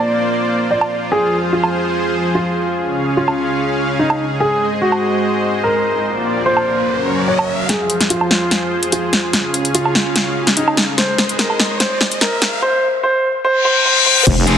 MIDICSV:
0, 0, Header, 1, 9, 480
1, 0, Start_track
1, 0, Tempo, 410959
1, 1302, Time_signature, 4, 2, 24, 8
1, 17028, End_track
2, 0, Start_track
2, 0, Title_t, "Grand piano"
2, 0, Program_c, 0, 0
2, 0, Note_on_c, 0, 74, 86
2, 733, Note_off_c, 0, 74, 0
2, 825, Note_on_c, 0, 74, 76
2, 1092, Note_off_c, 0, 74, 0
2, 1304, Note_on_c, 0, 68, 91
2, 1572, Note_off_c, 0, 68, 0
2, 1784, Note_on_c, 0, 65, 86
2, 2653, Note_off_c, 0, 65, 0
2, 2743, Note_on_c, 0, 65, 82
2, 3613, Note_off_c, 0, 65, 0
2, 3703, Note_on_c, 0, 65, 88
2, 4573, Note_off_c, 0, 65, 0
2, 4664, Note_on_c, 0, 63, 78
2, 4932, Note_off_c, 0, 63, 0
2, 5143, Note_on_c, 0, 68, 90
2, 5412, Note_off_c, 0, 68, 0
2, 5624, Note_on_c, 0, 66, 86
2, 6493, Note_off_c, 0, 66, 0
2, 6583, Note_on_c, 0, 70, 84
2, 7453, Note_off_c, 0, 70, 0
2, 7543, Note_on_c, 0, 72, 86
2, 8413, Note_off_c, 0, 72, 0
2, 8502, Note_on_c, 0, 73, 79
2, 8771, Note_off_c, 0, 73, 0
2, 8983, Note_on_c, 0, 68, 92
2, 9252, Note_off_c, 0, 68, 0
2, 9463, Note_on_c, 0, 65, 88
2, 10333, Note_off_c, 0, 65, 0
2, 10423, Note_on_c, 0, 65, 85
2, 11293, Note_off_c, 0, 65, 0
2, 11383, Note_on_c, 0, 65, 88
2, 12253, Note_off_c, 0, 65, 0
2, 12344, Note_on_c, 0, 63, 84
2, 12612, Note_off_c, 0, 63, 0
2, 12824, Note_on_c, 0, 72, 90
2, 13092, Note_off_c, 0, 72, 0
2, 13303, Note_on_c, 0, 70, 83
2, 13765, Note_off_c, 0, 70, 0
2, 13783, Note_on_c, 0, 72, 91
2, 14052, Note_off_c, 0, 72, 0
2, 14264, Note_on_c, 0, 70, 87
2, 14725, Note_off_c, 0, 70, 0
2, 14744, Note_on_c, 0, 72, 100
2, 15012, Note_off_c, 0, 72, 0
2, 15224, Note_on_c, 0, 72, 97
2, 15492, Note_off_c, 0, 72, 0
2, 15704, Note_on_c, 0, 72, 102
2, 15925, Note_off_c, 0, 72, 0
2, 15942, Note_on_c, 0, 72, 106
2, 16164, Note_off_c, 0, 72, 0
2, 16183, Note_on_c, 0, 72, 97
2, 16405, Note_off_c, 0, 72, 0
2, 16424, Note_on_c, 0, 72, 104
2, 16645, Note_off_c, 0, 72, 0
2, 17028, End_track
3, 0, Start_track
3, 0, Title_t, "Supersaw synth"
3, 0, Program_c, 1, 81
3, 0, Note_on_c, 1, 58, 83
3, 0, Note_on_c, 1, 65, 76
3, 0, Note_on_c, 1, 72, 73
3, 0, Note_on_c, 1, 74, 85
3, 1284, Note_off_c, 1, 58, 0
3, 1284, Note_off_c, 1, 72, 0
3, 1284, Note_off_c, 1, 74, 0
3, 1302, Note_on_c, 1, 68, 76
3, 1303, Note_on_c, 1, 53, 79
3, 1303, Note_on_c, 1, 72, 85
3, 3185, Note_off_c, 1, 65, 0
3, 3203, Note_off_c, 1, 68, 0
3, 3204, Note_off_c, 1, 53, 0
3, 3204, Note_off_c, 1, 72, 0
3, 3223, Note_on_c, 1, 61, 73
3, 3223, Note_on_c, 1, 77, 91
3, 3224, Note_on_c, 1, 49, 78
3, 3224, Note_on_c, 1, 68, 72
3, 5124, Note_off_c, 1, 49, 0
3, 5124, Note_off_c, 1, 61, 0
3, 5124, Note_off_c, 1, 77, 0
3, 5142, Note_on_c, 1, 72, 74
3, 5142, Note_on_c, 1, 75, 87
3, 5143, Note_on_c, 1, 56, 80
3, 7025, Note_off_c, 1, 68, 0
3, 7044, Note_off_c, 1, 56, 0
3, 7044, Note_off_c, 1, 75, 0
3, 7061, Note_on_c, 1, 65, 68
3, 7062, Note_on_c, 1, 58, 75
3, 7062, Note_on_c, 1, 74, 81
3, 7994, Note_off_c, 1, 72, 0
3, 8013, Note_off_c, 1, 58, 0
3, 8013, Note_off_c, 1, 65, 0
3, 8013, Note_off_c, 1, 74, 0
3, 8022, Note_on_c, 1, 54, 70
3, 8023, Note_on_c, 1, 61, 79
3, 8023, Note_on_c, 1, 66, 67
3, 8023, Note_on_c, 1, 70, 66
3, 8973, Note_off_c, 1, 54, 0
3, 8973, Note_off_c, 1, 61, 0
3, 8973, Note_off_c, 1, 66, 0
3, 8973, Note_off_c, 1, 70, 0
3, 8983, Note_on_c, 1, 53, 79
3, 8983, Note_on_c, 1, 65, 74
3, 8983, Note_on_c, 1, 68, 74
3, 8983, Note_on_c, 1, 72, 88
3, 10884, Note_off_c, 1, 53, 0
3, 10884, Note_off_c, 1, 65, 0
3, 10884, Note_off_c, 1, 72, 0
3, 10901, Note_on_c, 1, 49, 82
3, 10901, Note_on_c, 1, 77, 88
3, 10902, Note_on_c, 1, 61, 77
3, 12803, Note_off_c, 1, 49, 0
3, 12803, Note_off_c, 1, 61, 0
3, 12803, Note_off_c, 1, 77, 0
3, 12823, Note_on_c, 1, 56, 83
3, 12823, Note_on_c, 1, 72, 76
3, 12823, Note_on_c, 1, 75, 92
3, 14696, Note_off_c, 1, 68, 0
3, 14724, Note_off_c, 1, 56, 0
3, 14724, Note_off_c, 1, 72, 0
3, 14724, Note_off_c, 1, 75, 0
3, 16664, Note_on_c, 1, 60, 85
3, 16664, Note_on_c, 1, 65, 75
3, 16664, Note_on_c, 1, 68, 95
3, 17028, Note_off_c, 1, 60, 0
3, 17028, Note_off_c, 1, 65, 0
3, 17028, Note_off_c, 1, 68, 0
3, 17028, End_track
4, 0, Start_track
4, 0, Title_t, "Distorted electric guitar"
4, 0, Program_c, 2, 30
4, 16900, Note_on_c, 2, 68, 99
4, 16905, Note_on_c, 2, 60, 80
4, 16910, Note_on_c, 2, 53, 78
4, 17017, Note_off_c, 2, 53, 0
4, 17017, Note_off_c, 2, 60, 0
4, 17017, Note_off_c, 2, 68, 0
4, 17028, End_track
5, 0, Start_track
5, 0, Title_t, "Wobble bass"
5, 0, Program_c, 3, 39
5, 16664, Note_on_c, 3, 29, 103
5, 17010, Note_off_c, 3, 29, 0
5, 17028, End_track
6, 0, Start_track
6, 0, Title_t, "Impact"
6, 0, Program_c, 4, 103
6, 16664, Note_on_c, 4, 60, 73
6, 17028, Note_off_c, 4, 60, 0
6, 17028, End_track
7, 0, Start_track
7, 0, Title_t, "Reverse cymbal"
7, 0, Program_c, 5, 119
7, 15704, Note_on_c, 5, 60, 77
7, 16664, Note_off_c, 5, 60, 0
7, 17028, End_track
8, 0, Start_track
8, 0, Title_t, "Riser"
8, 0, Program_c, 6, 103
8, 5143, Note_on_c, 6, 60, 69
8, 8983, Note_off_c, 6, 60, 0
8, 8983, Note_on_c, 6, 60, 74
8, 14743, Note_off_c, 6, 60, 0
8, 17028, End_track
9, 0, Start_track
9, 0, Title_t, "Drums"
9, 950, Note_on_c, 9, 77, 67
9, 1067, Note_off_c, 9, 77, 0
9, 1910, Note_on_c, 9, 77, 48
9, 2027, Note_off_c, 9, 77, 0
9, 3830, Note_on_c, 9, 77, 49
9, 3947, Note_off_c, 9, 77, 0
9, 4789, Note_on_c, 9, 77, 74
9, 4906, Note_off_c, 9, 77, 0
9, 5749, Note_on_c, 9, 77, 50
9, 5866, Note_off_c, 9, 77, 0
9, 7670, Note_on_c, 9, 77, 50
9, 7787, Note_off_c, 9, 77, 0
9, 8630, Note_on_c, 9, 77, 77
9, 8747, Note_off_c, 9, 77, 0
9, 8983, Note_on_c, 9, 38, 46
9, 8983, Note_on_c, 9, 42, 79
9, 9100, Note_off_c, 9, 38, 0
9, 9100, Note_off_c, 9, 42, 0
9, 9223, Note_on_c, 9, 42, 53
9, 9340, Note_off_c, 9, 42, 0
9, 9350, Note_on_c, 9, 38, 41
9, 9350, Note_on_c, 9, 42, 52
9, 9463, Note_off_c, 9, 42, 0
9, 9463, Note_on_c, 9, 42, 78
9, 9467, Note_off_c, 9, 38, 0
9, 9580, Note_off_c, 9, 42, 0
9, 9591, Note_on_c, 9, 77, 49
9, 9703, Note_on_c, 9, 38, 49
9, 9707, Note_off_c, 9, 77, 0
9, 9820, Note_off_c, 9, 38, 0
9, 9943, Note_on_c, 9, 38, 49
9, 9943, Note_on_c, 9, 42, 76
9, 10060, Note_off_c, 9, 38, 0
9, 10060, Note_off_c, 9, 42, 0
9, 10310, Note_on_c, 9, 42, 51
9, 10423, Note_off_c, 9, 42, 0
9, 10423, Note_on_c, 9, 42, 77
9, 10539, Note_off_c, 9, 42, 0
9, 10662, Note_on_c, 9, 38, 55
9, 10662, Note_on_c, 9, 42, 52
9, 10779, Note_off_c, 9, 38, 0
9, 10779, Note_off_c, 9, 42, 0
9, 10902, Note_on_c, 9, 38, 58
9, 10902, Note_on_c, 9, 42, 79
9, 11019, Note_off_c, 9, 38, 0
9, 11019, Note_off_c, 9, 42, 0
9, 11143, Note_on_c, 9, 42, 54
9, 11260, Note_off_c, 9, 42, 0
9, 11270, Note_on_c, 9, 42, 54
9, 11383, Note_off_c, 9, 42, 0
9, 11383, Note_on_c, 9, 42, 79
9, 11500, Note_off_c, 9, 42, 0
9, 11511, Note_on_c, 9, 77, 48
9, 11623, Note_on_c, 9, 38, 61
9, 11628, Note_off_c, 9, 77, 0
9, 11740, Note_off_c, 9, 38, 0
9, 11863, Note_on_c, 9, 38, 65
9, 11863, Note_on_c, 9, 42, 81
9, 11979, Note_off_c, 9, 38, 0
9, 11979, Note_off_c, 9, 42, 0
9, 12230, Note_on_c, 9, 38, 59
9, 12230, Note_on_c, 9, 42, 55
9, 12343, Note_off_c, 9, 42, 0
9, 12343, Note_on_c, 9, 42, 78
9, 12347, Note_off_c, 9, 38, 0
9, 12460, Note_off_c, 9, 42, 0
9, 12470, Note_on_c, 9, 77, 75
9, 12583, Note_on_c, 9, 38, 70
9, 12583, Note_on_c, 9, 42, 55
9, 12587, Note_off_c, 9, 77, 0
9, 12700, Note_off_c, 9, 38, 0
9, 12700, Note_off_c, 9, 42, 0
9, 12824, Note_on_c, 9, 38, 72
9, 12824, Note_on_c, 9, 42, 80
9, 12941, Note_off_c, 9, 38, 0
9, 12941, Note_off_c, 9, 42, 0
9, 13063, Note_on_c, 9, 38, 76
9, 13063, Note_on_c, 9, 42, 56
9, 13180, Note_off_c, 9, 38, 0
9, 13180, Note_off_c, 9, 42, 0
9, 13190, Note_on_c, 9, 42, 51
9, 13303, Note_off_c, 9, 42, 0
9, 13303, Note_on_c, 9, 38, 80
9, 13303, Note_on_c, 9, 42, 82
9, 13420, Note_off_c, 9, 38, 0
9, 13420, Note_off_c, 9, 42, 0
9, 13430, Note_on_c, 9, 77, 47
9, 13544, Note_on_c, 9, 38, 78
9, 13547, Note_off_c, 9, 77, 0
9, 13660, Note_off_c, 9, 38, 0
9, 13784, Note_on_c, 9, 38, 81
9, 13784, Note_on_c, 9, 42, 82
9, 13901, Note_off_c, 9, 38, 0
9, 13901, Note_off_c, 9, 42, 0
9, 14024, Note_on_c, 9, 38, 87
9, 14141, Note_off_c, 9, 38, 0
9, 14151, Note_on_c, 9, 42, 52
9, 14264, Note_off_c, 9, 42, 0
9, 14264, Note_on_c, 9, 38, 85
9, 14264, Note_on_c, 9, 42, 75
9, 14381, Note_off_c, 9, 38, 0
9, 14381, Note_off_c, 9, 42, 0
9, 14504, Note_on_c, 9, 38, 88
9, 14504, Note_on_c, 9, 42, 53
9, 14621, Note_off_c, 9, 38, 0
9, 14621, Note_off_c, 9, 42, 0
9, 16664, Note_on_c, 9, 36, 113
9, 16664, Note_on_c, 9, 42, 83
9, 16664, Note_on_c, 9, 49, 103
9, 16780, Note_off_c, 9, 42, 0
9, 16780, Note_off_c, 9, 49, 0
9, 16781, Note_off_c, 9, 36, 0
9, 16903, Note_on_c, 9, 42, 58
9, 17020, Note_off_c, 9, 42, 0
9, 17028, End_track
0, 0, End_of_file